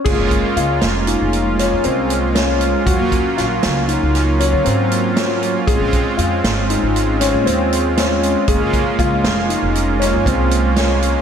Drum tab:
CC |x----------|-----------|-----------|-----------|
HH |-xxxxxxxxxx|xxxxxxxxxxx|xxxxxxxxxxx|xxxxxxxxxxx|
SD |---o--o--o-|--oo-o---o-|---o--o--o-|---o--o--o-|
BD |oo---------|oo---------|oo---------|ooo----o---|